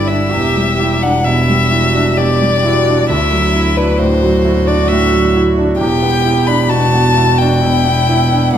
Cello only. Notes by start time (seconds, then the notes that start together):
Already playing: E4
0.31 G4
0.78 G4
1.25 E4
1.70 F#4
2.17 G4
2.63 F#4
3.09 E4
3.99 F#4
5.80 G4
6.70 F#4
7.61 E4
8.54 D4